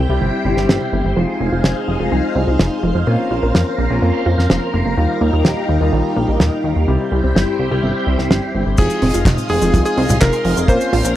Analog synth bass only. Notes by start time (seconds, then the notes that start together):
0.09 C2
0.21 G1
0.45 G1
0.57 G1
0.69 G1
0.93 G1
1.05 G1
1.16 F1
1.40 F1
1.52 F1
1.64 F1
1.88 F1
2.00 F1
2.12 C2
2.36 C2
2.48 C2
2.59 F1
2.83 F1
2.95 F1
3.07 A#2
3.31 A#1
3.43 A#1
3.55 F2
3.78 A#1
3.90 A#1
4.02 F2
4.26 F2
4.38 F2
4.50 F1
4.74 F1
4.86 F1
4.97 D#2
5.21 D#2
5.33 D#2
5.45 D#2
5.69 D#2
5.81 D#2
5.93 A#1
6.16 A#1
6.28 A#1
6.40 D#2
6.64 D#2
6.76 D#2
6.88 C2
7.12 C2
7.24 C2
7.36 G1
7.59 C2
7.71 C2
7.83 G1
8.07 C2
8.19 C2
8.31 G1
8.55 G1
8.67 G1
8.78 F1
9.02 F1
9.14 F1
9.25 F1
9.50 F1
9.62 F1
9.74 C2
9.97 C2
10.09 C2
10.22 F1
10.45 F1
10.57 F1
10.68 A#2
10.93 A#1
11.05 A#1